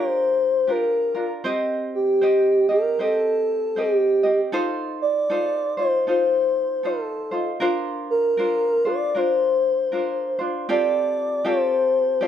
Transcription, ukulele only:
0.00 0.67 D4 soft
0.00 0.68 F4 medium
0.00 0.67 G4 soft
0.00 0.68 A#4 medium
0.67 1.15 D4 medium
0.67 1.14 F4 medium
0.67 1.15 G4 soft
0.67 1.13 A#4 medium
1.15 1.44 D4 soft
1.15 1.45 F4 soft
1.15 1.44 A#4 soft
1.44 2.22 C4 medium
1.44 2.21 G4 medium
1.44 2.21 C5 medium
1.44 2.23 D#5 medium
2.21 2.69 C4 medium
2.21 2.69 G4 medium
2.21 2.69 C5 medium
2.21 2.68 D#5 medium
2.69 2.98 C4 soft
2.69 2.99 G4 soft
2.69 2.99 D#5 medium
2.99 3.77 C4 medium
2.99 3.76 G4 medium
2.99 3.76 C5 medium
2.99 3.78 D#5 medium
3.76 4.24 C4 soft
3.76 4.23 G4 soft
3.76 4.23 C5 soft
3.76 4.22 D#5 soft
4.23 4.53 C4 soft
4.23 4.52 G4 soft
4.23 4.53 D#5 medium
4.52 5.29 D#4 medium
4.52 5.31 F4 medium
4.52 5.29 A4 medium
4.52 5.31 C5 loud
5.30 5.77 D#4 medium
5.30 5.77 F4 medium
5.30 5.77 A4 medium
5.30 5.76 C5 medium
5.77 6.07 D#4 soft
5.77 6.07 F4 soft
5.77 6.07 C5 soft
6.07 6.83 D#4 medium
6.07 6.84 F4 medium
6.07 6.82 A4 soft
6.07 6.85 C5 medium
6.83 7.31 D#4 medium
6.83 7.31 F4 soft
6.83 7.31 A4 soft
6.83 7.30 C5 medium
7.31 7.60 D#4 soft
7.31 7.60 F4 soft
7.31 7.61 C5 soft
7.60 8.37 D4 medium
7.60 8.39 F4 medium
7.60 8.36 A#4 medium
7.60 8.39 C5 medium
8.37 8.85 D4 medium
8.37 8.85 F4 medium
8.37 8.84 A#4 medium
8.37 8.84 C5 medium
8.85 9.14 D4 soft
8.85 9.15 F4 soft
8.85 9.14 C5 soft
9.15 9.91 D4 medium
9.15 9.92 F4 medium
9.15 9.91 A#4 soft
9.15 9.93 C5 medium
9.92 10.39 D4 soft
9.92 10.39 F4 medium
9.92 10.38 A#4 soft
9.92 10.37 C5 soft
10.39 10.69 D4 soft
10.39 10.69 F4 soft
10.39 10.68 C5 medium
10.69 11.45 C4 medium
10.69 11.45 F4 medium
10.69 11.43 G4 medium
10.69 11.45 A4 medium
11.45 12.21 C4 medium
11.45 12.22 F4 medium
11.45 12.20 G4 medium
11.45 12.21 A4 medium
12.21 12.28 C4 medium
12.21 12.28 F4 medium
12.21 12.28 G4 medium
12.21 12.28 A4 medium

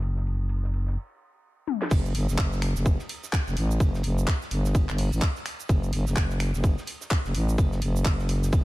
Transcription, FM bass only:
0.00 0.97 F#1 medium
1.91 2.13 F#1 loud
2.15 2.27 G1 medium
2.29 2.37 F#1 loud
2.38 2.74 F#1 loud
2.76 2.98 F#1 loud
3.47 3.55 F#1 loud
3.57 3.79 A1 loud
3.80 4.02 F#1 loud
4.04 4.26 F#1 loud
4.51 4.87 G1 loud
4.89 5.10 G1 loud
5.13 5.20 A1 loud
5.69 5.91 F#1 loud
5.93 6.05 G1 loud
6.07 6.15 F#1 loud
6.16 6.52 F#1 loud
6.54 6.76 F#1 medium
7.25 7.33 F#1 medium
7.34 7.57 A1 medium
7.58 7.80 F#1 loud
7.82 8.04 F#1 loud
8.05 8.51 F#1 loud
8.53 8.64 F#1 medium

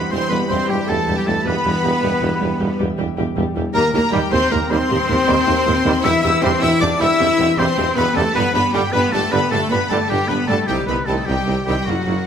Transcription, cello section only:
0.00 0.11 B3 medium
0.12 0.30 C4 medium
0.31 0.50 B3 loud
0.50 0.69 C4 medium
0.69 0.88 G3 medium
0.89 0.97 A3 medium
1.17 1.21 G3 medium
1.26 1.34 A3 loud
1.46 2.77 B3 loud
3.75 3.93 A#3 loud
3.94 4.13 A#3 loud
4.14 4.21 G3 loud
4.32 4.51 C4 loud
4.51 4.70 A#3 loud
4.70 6.02 C4 loud
6.04 6.23 E4 loud
6.24 6.43 E4 loud
6.43 6.62 C4 loud
6.62 6.82 E4 loud
6.81 7.01 D4 loud
7.01 7.57 E4 loud
7.58 7.96 C4 loud
7.96 8.16 B3 loud
8.16 8.35 A3 loud
8.35 8.53 B3 loud
8.54 8.73 B3 loud
8.74 8.94 G3 loud
8.93 9.12 B3 loud
9.12 9.32 A3 loud
9.32 9.51 B3 loud
9.51 9.71 A3 loud
9.71 9.90 B3 loud
9.90 10.10 A3 loud
10.10 10.29 G3 medium
10.29 10.49 B3 loud
10.48 10.68 A3 loud
10.68 10.88 G3 loud
10.88 11.07 B3 medium
11.08 11.27 A3 medium
11.27 11.66 G3 medium
11.67 11.87 G3 medium
11.87 12.27 F#3 medium

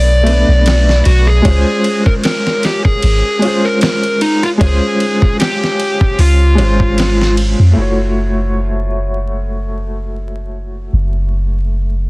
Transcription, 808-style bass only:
0.00 0.44 B1 medium
0.48 1.02 B1 medium
1.06 1.41 B1 loud
1.45 1.64 C#2 medium
3.03 3.22 G#1 medium
4.61 4.80 C#2 medium
6.19 6.58 C#2 medium
6.59 7.55 G#1 medium
7.59 7.75 F2 medium
7.77 10.89 F#1 medium
10.93 12.10 F#1 medium

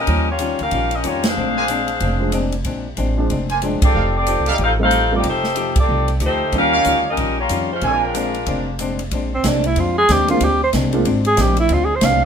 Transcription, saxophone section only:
0.00 0.27 C#4 medium
0.00 0.27 G4 medium
0.00 0.27 A#4 medium
0.00 0.27 D#5 medium
0.30 0.59 A#3 medium
0.30 0.59 F4 medium
0.30 0.59 G4 medium
0.30 0.59 C#5 medium
0.63 0.93 C#4 medium
0.63 0.94 G4 medium
0.63 0.93 A#4 medium
0.63 0.94 F5 medium
0.95 1.06 C#4 medium
0.95 1.06 G4 medium
0.95 1.06 A#4 medium
0.95 1.06 D#5 medium
1.07 1.26 A#3 medium
1.07 1.26 F4 medium
1.07 1.26 G4 medium
1.07 1.26 C#5 medium
1.27 2.51 D4 medium
1.27 2.51 G#4 medium
1.27 2.51 C5 medium
1.27 2.51 F5 medium
3.84 4.13 C4 medium
3.84 4.13 G4 medium
3.84 4.14 A4 medium
3.84 4.13 D5 medium
4.17 4.46 C4 medium
4.17 4.46 G4 medium
4.17 4.47 A4 medium
4.17 4.46 D5 medium
4.51 4.61 A#3 medium
4.51 4.61 D#4 medium
4.51 4.61 G4 medium
4.51 4.61 D5 medium
4.63 4.71 D#4 medium
4.63 4.72 A4 medium
4.63 4.72 C5 medium
4.63 4.72 F5 medium
4.83 5.12 D#4 medium
4.83 5.12 A4 medium
4.83 5.12 C5 medium
4.83 5.12 F5 loud
5.16 5.27 A#3 medium
5.16 5.26 D#4 medium
5.16 5.27 G4 medium
5.16 5.27 D5 medium
5.28 5.75 A3 medium
5.28 5.75 D#4 medium
5.28 5.75 G4 medium
5.28 5.75 C5 medium
5.80 6.11 C4 medium
5.80 6.11 G4 medium
5.80 6.11 A4 medium
5.80 6.11 D5 medium
6.26 6.54 A3 medium
6.26 6.54 D#4 medium
6.26 6.54 G4 medium
6.26 6.54 C5 loud
6.57 7.04 C#4 medium
6.57 7.04 G4 medium
6.57 7.04 A#4 medium
6.57 7.04 F5 medium
7.10 7.38 C#4 medium
7.10 7.38 G4 medium
7.10 7.38 A#4 medium
7.10 7.38 D#5 medium
7.40 7.69 A#3 medium
7.40 7.69 F4 medium
7.40 7.69 G4 medium
7.40 7.70 C#5 medium
7.72 7.83 G#3 medium
7.72 7.83 C#4 medium
7.72 7.83 F4 medium
7.72 7.83 C5 medium
7.85 8.77 G#3 medium
7.85 8.77 D4 medium
7.85 8.77 F4 medium
7.85 8.77 A#4 medium

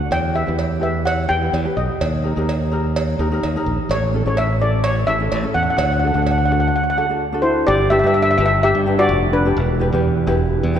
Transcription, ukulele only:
0.00 0.10 F#4 medium
0.00 0.11 A4 medium
0.00 0.11 D5 medium
0.33 0.41 E4 medium
0.33 0.42 G4 medium
0.33 0.42 B4 medium
0.46 0.68 E4 medium
0.46 0.68 G4 soft
0.46 0.69 B4 medium
0.79 1.10 E4 medium
0.79 1.10 G4 medium
0.79 1.11 B4 medium
1.28 1.36 E4 medium
1.28 1.37 G4 medium
1.28 1.37 B4 medium
1.41 1.55 E4 medium
1.41 1.55 G4 medium
1.41 1.56 B4 medium
1.64 2.00 E4 medium
1.64 2.00 G4 medium
1.64 2.01 B4 medium
2.23 2.31 D#4 medium
2.23 2.32 G4 medium
2.23 2.32 A#4 medium
2.36 2.58 D#4 medium
2.36 2.58 G4 medium
2.36 2.59 A#4 medium
2.72 3.00 D#4 medium
2.72 3.01 G4 medium
2.72 3.01 A#4 medium
3.19 3.27 D#4 medium
3.19 3.27 G4 medium
3.19 3.27 A#4 medium
3.32 3.45 D#4 medium
3.32 3.45 G4 medium
3.32 3.46 A#4 medium
3.56 3.90 D#4 medium
3.56 3.91 G4 medium
3.56 3.91 A#4 medium
4.14 4.21 C#4 medium
4.14 4.21 E4 medium
4.14 4.22 A4 medium
4.26 4.47 C#4 medium
4.26 4.48 E4 medium
4.26 4.48 A4 medium
4.60 4.89 C#4 medium
4.60 4.90 E4 medium
4.60 4.90 A4 medium
5.08 5.16 C#4 medium
5.08 5.16 E4 medium
5.08 5.16 A4 medium
5.20 5.34 C#4 medium
5.20 5.35 E4 medium
5.20 5.35 A4 medium
5.43 5.78 C#4 medium
5.43 5.79 E4 medium
5.43 5.79 A4 medium
6.03 6.10 D4 medium
6.03 6.11 F#4 medium
6.03 6.11 A4 medium
6.16 6.37 D4 medium
6.16 6.37 F#4 medium
6.16 6.38 A4 medium
6.50 6.79 D4 medium
6.50 6.79 F#4 medium
6.50 6.79 A4 medium
6.96 7.04 D4 medium
6.96 7.05 F#4 medium
6.96 7.05 A4 medium
7.09 7.23 D4 medium
7.09 7.23 F#4 medium
7.09 7.24 A4 medium
7.33 7.68 D4 medium
7.33 7.68 F#4 medium
7.33 7.68 A4 medium
7.91 7.99 D4 medium
7.91 7.99 G4 medium
7.91 7.99 B4 medium
8.04 8.25 D4 medium
8.04 8.25 G4 medium
8.04 8.26 B4 medium
8.39 8.67 D4 medium
8.39 8.68 G4 medium
8.39 8.68 B4 medium
8.86 8.94 D4 medium
8.86 8.94 G4 medium
8.86 8.94 B4 medium
8.98 9.26 D4 medium
8.98 9.27 G4 medium
8.98 9.27 B4 medium
9.45 9.57 D4 medium
9.45 9.57 G4 medium
9.45 9.57 B4 medium
9.79 9.87 E4 medium
9.79 9.88 G4 medium
9.79 9.88 B4 medium
9.93 10.14 E4 medium
9.93 10.14 G4 medium
9.93 10.15 B4 medium
10.27 10.55 E4 medium
10.27 10.56 G4 medium
10.27 10.56 B4 loud
10.74 10.79 E4 medium
10.74 10.79 G4 medium
10.74 10.79 B4 loud

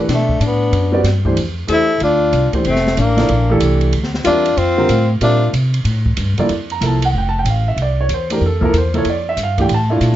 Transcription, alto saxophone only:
0.10 0.39 D4 medium
0.42 1.02 D4 medium
1.69 1.99 A4 medium
2.03 2.51 F4 medium
2.67 2.96 C4 medium
2.98 3.58 D4 medium
4.25 4.56 F4 medium
4.56 5.09 F4 medium
5.22 5.51 F4 medium

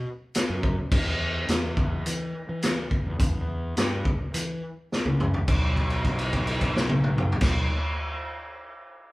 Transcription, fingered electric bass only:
0.49 0.76 F#2 loud
0.91 1.45 E2 loud
1.49 2.02 E2 loud
2.06 2.33 E3 loud
2.49 2.75 E3 loud
3.06 3.19 E2 medium
3.20 3.73 E2 medium
3.77 4.03 G2 loud
4.34 4.60 E3 medium
5.05 5.32 C#2 medium
5.48 7.31 B1 medium
7.41 7.65 B1 loud

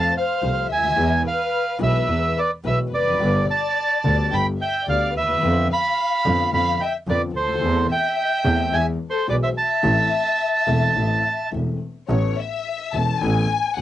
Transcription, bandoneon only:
0.00 0.14 A5 medium
0.17 0.67 F5 medium
0.72 1.22 G#5 medium
1.27 1.78 F5 medium
1.83 2.39 E5 medium
2.39 2.51 D5 medium
2.67 2.79 E5 medium
2.94 3.45 D5 medium
3.50 4.36 A5 medium
4.34 4.46 B5 medium
4.62 4.86 G5 medium
4.89 5.14 F5 medium
5.17 5.68 E5 medium
5.73 6.50 B5 medium
6.54 6.81 B5 medium
6.81 6.93 G5 medium
7.10 7.22 D5 medium
7.37 7.87 C5 medium
7.92 8.76 G5 medium
8.74 8.86 G#5 medium
9.10 9.27 C5 medium
9.30 9.36 D5 medium
9.43 9.49 E5 medium
9.58 11.50 A5 medium

